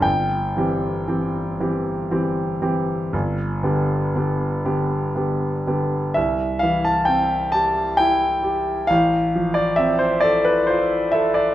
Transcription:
\new Staff \with { instrumentName = "Grand piano" } { \time 12/8 \key c \major \tempo 4. = 42 << { g''1~ g''8 r4. | e''8 f''16 a''16 g''8 a''8 g''4 f''8. d''16 e''16 c''16 d''16 b'16 c''8 e''16 d''16 | } \\ { g,,8 <e c' g'>8 <e c' g'>8 <e c' g'>8 <e c' g'>8 <e c' g'>8 g,,8 <d b g'>8 <d b g'>8 <d b g'>8 <d b g'>8 <d b g'>8 | c,8 e8 c'8 g'8 e'8 g'8 a,,8 f8 c'8 a'8 f'8 a'8 | } >> }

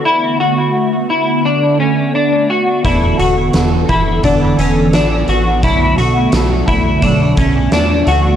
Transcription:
<<
  \new Staff \with { instrumentName = "Clean electric guitar" } { \time 4/4 \key b \dorian \tempo 4 = 86 e'8 fis'4 e'8 d'8 cis'8 d'8 fis'8 | e'8 fis'4 e'8 d'8 cis'8 d'8 fis'8 | e'8 fis'4 e'8 d'8 cis'8 d'8 fis'8 | }
  \new Staff \with { instrumentName = "Clean electric guitar" } { \time 4/4 \key b \dorian r1 | <e b d' a'>8 <b d' a'>8 <e b d' a'>8 <b d' a'>8 <e b d' a'>8 <b d' a'>8 <e b d' a'>8 <b d' a'>8 | <b, fis a d' a'>8 <a d' a'>8 <fis a d' a'>8 <a d' a'>8 <b, fis a d' a'>8 <a d' a'>8 <fis a d' a'>8 <a d' a'>8 | }
  \new Staff \with { instrumentName = "Analog synth pad" } { \time 4/4 \key b \dorian << { <d a b>1 | <e b a'>1 | a1 | } \\ { r1 | d1~ | d1 | } >> }
  \new Staff \with { instrumentName = "Analog synth bass" } { \clef bass \time 4/4 \key b \dorian r1 | e,,8 e,,8 e,,8 e,,8 e,,8 e,,8 a,,8 a,,8 | b,,8 b,,8 b,,8 b,,8 b,,8 b,,8 e,8 d,8 | }
  \new DrumStaff \with { instrumentName = "Drums" } \drummode { \time 4/4 r4 r4 r4 r4 | <hh bd>8 hh8 <hh sn>8 <hh bd>8 <hh bd>8 hh8 <hh sn>8 hh8 | <hh bd>8 hh8 <hh sn>8 <hh bd>8 <hh bd>8 <hh bd>8 <hh sn>8 hh8 | }
>>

